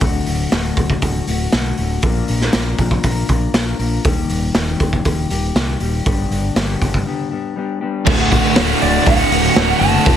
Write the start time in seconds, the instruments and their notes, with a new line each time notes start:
Already playing: clean electric guitar D4
0.01 fingered electric bass D1, clean electric guitar D2 A2 D3 A3 F#4, kick, open hi-hat
0.26 fingered electric bass D1, open hi-hat
0.51 fingered electric bass D1, clean electric guitar D2 A2 D3 A3 F#4, snare, open hi-hat
0.77 fingered electric bass D1, kick, open hi-hat
0.90 kick
1.02 fingered electric bass D1, clean electric guitar A2 D3 A3 F#4, kick, open hi-hat
1.27 fingered electric bass D1, clean electric guitar D3 A3 F#4, open hi-hat
1.52 fingered electric bass B1, clean electric guitar A2 D3 A3 F#4, snare, open hi-hat
1.78 fingered electric bass D1, clean electric guitar D3 A3 F#4, open hi-hat
2.02 fingered electric bass A#1, clean electric guitar A#2 F3 A#3 D4 F4 A#4, kick, open hi-hat
2.28 fingered electric bass A#1, open hi-hat
2.41 snare
2.53 fingered electric bass A#1, clean electric guitar A#2 F3 A#3 D4 F4 A#4, snare, open hi-hat
2.78 fingered electric bass A#1, kick, open hi-hat
2.91 kick
3.03 fingered electric bass A#1, clean electric guitar A#3 D4 F4 A#4, kick, open hi-hat
3.29 fingered electric bass A#1, clean electric guitar A#3 D4 F4 A#4, kick, open hi-hat
3.53 fingered electric bass A#1, clean electric guitar A#3 D4 F4 A#4, snare, open hi-hat
3.79 fingered electric bass A#1, clean electric guitar A#3 D4 F4 A#4, open hi-hat
4.04 fingered electric bass D#1, clean electric guitar D#2 A#2 D#3 G3 G4, kick, open hi-hat
4.30 fingered electric bass D#1, open hi-hat
4.55 fingered electric bass D#1, clean electric guitar D#2 A#2 D#3 G3 G4, snare, open hi-hat
4.80 fingered electric bass D#1, kick, open hi-hat
4.93 kick
5.05 fingered electric bass D#1, clean electric guitar A#2 D#3 G3 G4, kick, open hi-hat
5.30 fingered electric bass D#1, clean electric guitar D#3 G3 G4, open hi-hat
5.55 fingered electric bass C2, clean electric guitar D#3 G3 G4, snare, open hi-hat
5.80 fingered electric bass D#1, clean electric guitar D#3 G3 G4, open hi-hat
6.05 fingered electric bass G1, clean electric guitar G2 D3 G3 B3 D4 G4, kick, open hi-hat
6.30 fingered electric bass G1, open hi-hat
6.55 fingered electric bass G1, clean electric guitar G2 D3 G3 B3 D4 G4, snare, open hi-hat
6.82 fingered electric bass G1, kick, open hi-hat
6.94 kick
7.06 clean electric guitar G3 B3 D4 G4
7.31 clean electric guitar G3 B3 D4 G4
7.56 clean electric guitar G3 B3 D4 G4
7.81 clean electric guitar G3 B3 D4 G4
8.06 fingered electric bass D1, overdriven electric guitar D2 A2 D3 A3 F#4, kick, crash
8.31 overdriven electric guitar D3 A3 F#4, kick, open hi-hat
8.56 fingered electric bass D1, overdriven electric guitar D2 A2 D3 A3 F#4, snare, open hi-hat
8.82 fingered electric bass D1, lead electric guitar D5, open hi-hat
9.06 fingered electric bass D1, lead electric guitar F#5, kick, open hi-hat
9.31 fingered electric bass D1, overdriven electric guitar D3 A3 F#4, open hi-hat
9.55 fingered electric bass D1, overdriven electric guitar A2 D3 A3 F#4, snare, open hi-hat
9.79 fingered electric bass F#1, overdriven electric guitar A3 F#4, lead electric guitar A5, open hi-hat
9.84 overdriven electric guitar D3
10.06 fingered electric bass F1, overdriven electric guitar F2 C3 F3 A3 C4 F4, kick, open hi-hat